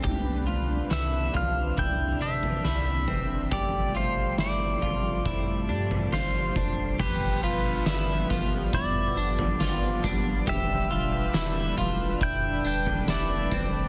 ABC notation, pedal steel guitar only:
X:1
M:4/4
L:1/8
Q:1/4=69
K:Gmix
V:1 name="Pedal steel guitar"
z2 e f g e3 | d c d4 c2 | B B3 d4 | e4 g g d2 |]